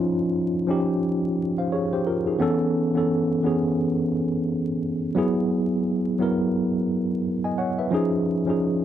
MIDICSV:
0, 0, Header, 1, 2, 480
1, 0, Start_track
1, 0, Tempo, 689655
1, 1671, Time_signature, 4, 2, 24, 8
1, 6158, End_track
2, 0, Start_track
2, 0, Title_t, "Tine electric piano"
2, 0, Program_c, 0, 4
2, 0, Control_c, 0, 64, 127
2, 0, Note_on_c, 0, 53, 92
2, 0, Note_on_c, 0, 61, 83
2, 0, Note_on_c, 0, 63, 84
2, 0, Note_on_c, 0, 65, 102
2, 409, Note_off_c, 0, 53, 0
2, 413, Note_off_c, 0, 61, 0
2, 418, Note_off_c, 0, 63, 0
2, 421, Note_off_c, 0, 65, 0
2, 466, Note_on_c, 0, 53, 70
2, 475, Note_on_c, 0, 61, 64
2, 483, Note_on_c, 0, 63, 67
2, 491, Note_on_c, 0, 67, 81
2, 957, Note_off_c, 0, 63, 0
2, 961, Note_off_c, 0, 67, 0
2, 1101, Note_on_c, 0, 77, 53
2, 1106, Note_on_c, 0, 72, 45
2, 1190, Note_off_c, 0, 77, 0
2, 1193, Note_off_c, 0, 72, 0
2, 1199, Note_on_c, 0, 73, 60
2, 1203, Note_on_c, 0, 68, 52
2, 1331, Note_off_c, 0, 73, 0
2, 1333, Note_off_c, 0, 68, 0
2, 1341, Note_on_c, 0, 72, 60
2, 1345, Note_on_c, 0, 67, 53
2, 1350, Note_off_c, 0, 53, 0
2, 1355, Note_off_c, 0, 61, 0
2, 1430, Note_off_c, 0, 72, 0
2, 1432, Note_off_c, 0, 67, 0
2, 1438, Note_on_c, 0, 70, 62
2, 1442, Note_on_c, 0, 65, 54
2, 1570, Note_off_c, 0, 70, 0
2, 1572, Note_off_c, 0, 65, 0
2, 1580, Note_on_c, 0, 68, 58
2, 1584, Note_on_c, 0, 63, 49
2, 1661, Note_on_c, 0, 52, 91
2, 1668, Note_on_c, 0, 59, 89
2, 1675, Note_on_c, 0, 61, 86
2, 1679, Control_c, 0, 64, 0
2, 1685, Note_on_c, 0, 69, 104
2, 1805, Note_off_c, 0, 68, 0
2, 1807, Note_off_c, 0, 63, 0
2, 1813, Control_c, 0, 64, 127
2, 2006, Note_off_c, 0, 52, 0
2, 2009, Note_off_c, 0, 59, 0
2, 2013, Note_off_c, 0, 61, 0
2, 2017, Note_off_c, 0, 69, 0
2, 2046, Note_on_c, 0, 52, 63
2, 2055, Note_on_c, 0, 59, 63
2, 2063, Note_on_c, 0, 61, 61
2, 2070, Note_on_c, 0, 69, 74
2, 2358, Note_off_c, 0, 52, 0
2, 2362, Note_off_c, 0, 59, 0
2, 2366, Note_off_c, 0, 61, 0
2, 2370, Note_off_c, 0, 69, 0
2, 2386, Note_on_c, 0, 52, 73
2, 2395, Note_on_c, 0, 59, 65
2, 2402, Note_on_c, 0, 61, 64
2, 2409, Note_on_c, 0, 68, 79
2, 3270, Note_off_c, 0, 52, 0
2, 3275, Note_off_c, 0, 59, 0
2, 3278, Note_off_c, 0, 61, 0
2, 3282, Note_off_c, 0, 68, 0
2, 3583, Note_on_c, 0, 54, 92
2, 3591, Note_on_c, 0, 59, 82
2, 3599, Note_on_c, 0, 64, 85
2, 3601, Control_c, 0, 64, 0
2, 3607, Note_on_c, 0, 68, 100
2, 3718, Control_c, 0, 64, 127
2, 4249, Note_off_c, 0, 54, 0
2, 4252, Note_off_c, 0, 59, 0
2, 4257, Note_off_c, 0, 64, 0
2, 4260, Note_off_c, 0, 68, 0
2, 4307, Note_on_c, 0, 54, 68
2, 4315, Note_on_c, 0, 59, 64
2, 4324, Note_on_c, 0, 64, 65
2, 4330, Note_on_c, 0, 70, 79
2, 5041, Note_off_c, 0, 70, 0
2, 5180, Note_on_c, 0, 80, 53
2, 5184, Note_on_c, 0, 75, 45
2, 5191, Note_off_c, 0, 54, 0
2, 5195, Note_off_c, 0, 59, 0
2, 5199, Note_off_c, 0, 64, 0
2, 5270, Note_off_c, 0, 80, 0
2, 5272, Note_off_c, 0, 75, 0
2, 5276, Note_on_c, 0, 78, 62
2, 5281, Note_on_c, 0, 73, 52
2, 5409, Note_off_c, 0, 78, 0
2, 5412, Note_off_c, 0, 73, 0
2, 5419, Note_on_c, 0, 76, 55
2, 5424, Note_on_c, 0, 71, 47
2, 5503, Note_on_c, 0, 53, 89
2, 5511, Note_on_c, 0, 61, 80
2, 5519, Note_on_c, 0, 63, 82
2, 5520, Control_c, 0, 64, 0
2, 5528, Note_on_c, 0, 68, 98
2, 5639, Control_c, 0, 64, 127
2, 5644, Note_off_c, 0, 76, 0
2, 5647, Note_off_c, 0, 71, 0
2, 5846, Note_off_c, 0, 53, 0
2, 5851, Note_off_c, 0, 61, 0
2, 5855, Note_off_c, 0, 63, 0
2, 5859, Note_off_c, 0, 68, 0
2, 5890, Note_on_c, 0, 53, 67
2, 5899, Note_on_c, 0, 61, 59
2, 5907, Note_on_c, 0, 63, 58
2, 5915, Note_on_c, 0, 68, 70
2, 6158, Note_off_c, 0, 53, 0
2, 6158, Note_off_c, 0, 61, 0
2, 6158, Note_off_c, 0, 63, 0
2, 6158, Note_off_c, 0, 68, 0
2, 6158, End_track
0, 0, End_of_file